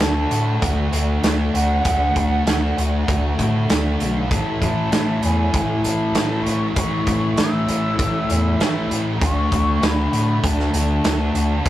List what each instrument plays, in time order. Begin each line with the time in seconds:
0.00 analog synth bass D2, overdriven electric guitar D3 A3 D4 F#4, flute A5, snare, closed hi-hat
0.30 analog synth bass A2, overdriven electric guitar A3 D4 F#4, closed hi-hat
0.61 analog synth bass D2, distorted electric guitar D3 A3 D4, flute F#5, kick, closed hi-hat
0.92 analog synth bass D2, distorted electric guitar A3 D4, closed hi-hat
1.23 analog synth bass D2, overdriven electric guitar D3 A3 D4 F#4, snare, closed hi-hat
1.53 analog synth bass D2, overdriven electric guitar A3 D4 F#4, flute F#5, closed hi-hat
1.84 analog synth bass D2, overdriven electric guitar D3 A3 D4 F#4, kick, closed hi-hat
2.15 analog synth bass D2, overdriven electric guitar A3 D4 F#4, kick, closed hi-hat
2.46 analog synth bass D2, overdriven electric guitar D3 A3 D4 F#4, snare, closed hi-hat
2.77 analog synth bass D2, overdriven electric guitar A3 D4 F#4, closed hi-hat
3.08 analog synth bass D2, distorted electric guitar D3 A3 D4, kick, closed hi-hat
3.38 analog synth bass A2, distorted electric guitar A3 D4, kick, closed hi-hat
3.69 analog synth bass D2, overdriven electric guitar D3 A3 D4 F#4, snare, closed hi-hat
3.99 analog synth bass B1, overdriven electric guitar A3 D4 F#4, closed hi-hat
4.30 analog synth bass A1, overdriven electric guitar A2 E3 A3 C#4 E4, flute A5, kick, closed hi-hat
4.61 analog synth bass A1, overdriven electric guitar A3 C#4 E4, flute A5, kick, closed hi-hat
4.91 analog synth bass A1, distorted electric guitar A2, overdriven electric guitar E3 A3 C#4 E4, snare, closed hi-hat
5.22 analog synth bass E2, overdriven electric guitar A3 C#4 E4, flute G#5, closed hi-hat
5.54 analog synth bass A1, distorted electric guitar A2 E3 A3, kick, closed hi-hat
5.83 analog synth bass A1, distorted electric guitar E3 A3, flute A5, closed hi-hat
6.14 analog synth bass A1, distorted electric guitar A2, overdriven electric guitar E3 A3 C#4 E4, snare, closed hi-hat
6.43 analog synth bass A1, overdriven electric guitar C#4 E4, flute C#6, closed hi-hat
6.47 overdriven electric guitar A3
6.75 analog synth bass A1, overdriven electric guitar A2 E3 A3 C#4 E4, flute C#6, kick, closed hi-hat
7.06 analog synth bass A1, overdriven electric guitar A3 C#4 E4, kick, closed hi-hat
7.36 analog synth bass A1, distorted electric guitar A2, overdriven electric guitar E3 A3 C#4 E4, flute E6, snare, closed hi-hat
7.68 analog synth bass A1, overdriven electric guitar A3 C#4 E4, closed hi-hat
7.99 analog synth bass A1, distorted electric guitar A2 E3 A3, kick, closed hi-hat
8.29 analog synth bass E2, distorted electric guitar E3 A3, closed hi-hat
8.59 analog synth bass A1, distorted electric guitar A2, overdriven electric guitar E3 A3 C#4 E4, snare, closed hi-hat
8.90 analog synth bass A1, overdriven electric guitar A3 C#4 E4, closed hi-hat
9.21 analog synth bass D2, overdriven electric guitar D3 A3 D4 F#4, flute C#6, kick, closed hi-hat
9.51 analog synth bass D2, overdriven electric guitar A3 D4 F#4, kick, closed hi-hat
9.81 analog synth bass D2, overdriven electric guitar D3 A3 D4 F#4, flute B5, snare, closed hi-hat
10.12 analog synth bass A2, overdriven electric guitar A3 D4 F#4, closed hi-hat
10.44 analog synth bass D2, distorted electric guitar D3 A3 D4, flute A5, kick, closed hi-hat
10.60 snare
10.73 analog synth bass D2, distorted electric guitar A3 D4, closed hi-hat
11.04 analog synth bass D2, overdriven electric guitar D3 A3 D4 F#4, snare, closed hi-hat
11.34 analog synth bass D2, overdriven electric guitar A3 D4 F#4, closed hi-hat
11.65 analog synth bass D2, overdriven electric guitar D3 A3, kick, closed hi-hat